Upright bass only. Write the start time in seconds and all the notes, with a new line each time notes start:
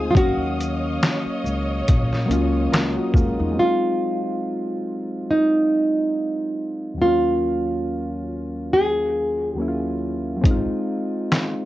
Already playing: D2
0.15 D#2
1.25 muted upright bass stroke
1.44 C#2
1.89 A#1
2.30 C#2
2.72 C#2
3.14 D#2
3.39 E2